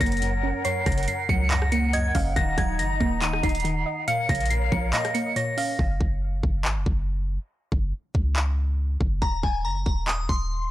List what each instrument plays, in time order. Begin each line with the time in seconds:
Already playing: synth pluck F#2 C#3 F#3 F#5, flute section A#4 C#5 F#5
0.00 808-style bass F#1, synth pluck A#3, synth bell A#6, kick, closed hi-hat
0.06 closed hi-hat
0.12 closed hi-hat
0.17 closed hi-hat
0.22 synth pluck F#2, closed hi-hat
0.43 synth pluck C#4
0.64 synth pluck F#2 C#5, synth bell C7, closed hi-hat
0.86 808-style bass F#1, synth pluck C#3, synth bell A#6, kick, cross-stick, closed hi-hat
0.92 closed hi-hat
0.98 closed hi-hat
1.03 closed hi-hat
1.08 synth pluck F#2, synth bell C7, closed hi-hat
1.29 808-style bass C#2, synth pluck F#3, synth bell C#7, kick
1.50 synth pluck F#2, synth bell A#6, clap, closed hi-hat
1.62 cross-stick
1.72 synth pluck A#3, synth bell C#7, closed hi-hat
1.93 synth pluck F#2 D#5, synth bell G#6, closed hi-hat
2.15 808-style bass F#1, synth pluck C#4 F5, kick, open hi-hat
2.36 808-style bass D#1, synth pluck D#3 F#5, flute section D#4 D#5 A#5, synth bell A#6, kick, closed hi-hat
2.58 808-style bass D#1, synth pluck F#3, synth bell G#6, kick, cross-stick, closed hi-hat
2.79 808-style bass F#1, synth pluck D#3, synth bell A#6, closed hi-hat
3.00 808-style bass D#1, synth pluck A#3, synth bell A#6, kick
3.22 synth pluck D#3, synth bell D#7, clap, closed hi-hat
3.33 cross-stick
3.43 808-style bass D#1, synth pluck D#4, synth bell C7, kick, closed hi-hat
3.49 closed hi-hat
3.55 closed hi-hat
3.60 closed hi-hat
3.65 synth pluck D#3, closed hi-hat
3.86 synth pluck D#5
4.08 synth pluck A#2 F5, flute section A#4 C#5 F5, synth bell C#7, closed hi-hat
4.29 808-style bass A#1, synth pluck C#3, synth bell A#6, kick, closed hi-hat
4.35 closed hi-hat
4.41 closed hi-hat
4.46 closed hi-hat
4.50 synth pluck A#2, synth bell C7, closed hi-hat
4.72 808-style bass A#1, synth pluck F3, synth bell C#7, kick
4.93 synth pluck A#2 D#5, synth bell A#6, clap, closed hi-hat
5.05 cross-stick, closed hi-hat
5.14 synth pluck A#3, synth bell C#7, closed hi-hat
5.36 synth pluck A#2 C#5, synth bell A#6, closed hi-hat
5.57 synth pluck C#4 F5, open hi-hat
5.79 808-style bass F#1, kick
6.01 808-style bass F#1, kick
6.43 808-style bass F#1, kick
6.65 808-style bass G#1, clap
6.76 808-style bass F#1
6.86 808-style bass F#1, kick
7.72 808-style bass F#1, kick
8.15 808-style bass C#2, kick
8.36 clap
9.01 808-style bass F#1, kick
9.22 808-style bass D#1, synth bell A#5, kick
9.43 808-style bass D#1, synth bell G#5, kick
9.65 808-style bass F#1, synth bell A#5
9.86 808-style bass D#1, synth bell A#5, kick
10.07 synth bell D#6, clap
10.29 808-style bass D#1, synth bell C6, kick